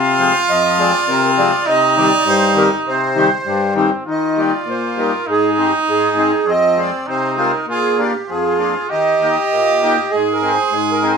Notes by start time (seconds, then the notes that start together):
Already playing: C3 F4 F5
0.19 F3 G#3 C4
0.48 F2 D#5
0.78 F3 G#3 C4 D5
1.08 C3 A#4
1.24 A#4
1.38 F3 G#3 C4 D5
1.66 C3 D#4 D#5
1.96 D#3 G3 C4 D5
2.25 G2 C5
2.55 D#3 G3 C4 A#4
2.85 C3 C5
3.15 D#3 G3 C4
3.46 G2 D4
3.75 D#3 G3 C4
4.05 D#3 F4
4.10 D#5
4.37 G3 A#3 D#4 D5
4.66 A#2 C5
4.97 G3 A#3 D#4 A#4
5.26 G#2 D#4
5.31 G#4
5.52 G#4
5.57 G#3 C4 D#4
5.62 G4
5.88 G#2 G#4
6.16 G#3 C4 D#4
6.46 F2 C4 D#5
6.76 G#3 C4 F4 D5
7.07 C3 D#4 C5
7.37 G#3 C4 F4 A#4
7.67 A#2 F4 G#4
7.98 A#3 D4 F4 G4
8.28 F2 F4 G#4
8.59 A#3 D4 F4
8.90 D#3 G4 D#5
9.22 A#3 D#4 G4
9.52 A#2
9.82 A#3 D#4 G4
10.12 G#2 G#4
10.33 A#4
10.42 C4 D#4 G#4
10.53 C5
10.71 G#2 G#4
10.92 A#4
11.02 C4 D#4 G#4
11.12 C5